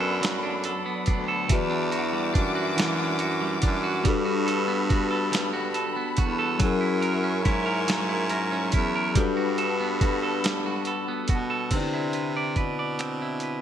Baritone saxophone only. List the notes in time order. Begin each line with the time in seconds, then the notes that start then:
Already playing: F#2
1.08 D2
1.51 E2
2.36 F#2
3.64 F#2
4.06 G2
6.19 E2
6.61 F#2
7.47 G#2
8.74 E2
9.17 G2
11.30 B2
11.72 C3
12.57 B2